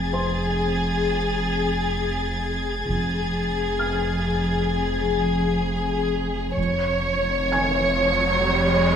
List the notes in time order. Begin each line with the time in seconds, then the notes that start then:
Already playing: F1 F2 G#4 G#6 A6
0.13 C5 C6
2.88 F1 F2 G#4
3.79 F6
6.57 F1 F2 C#5, riser
7.52 G#5 G#6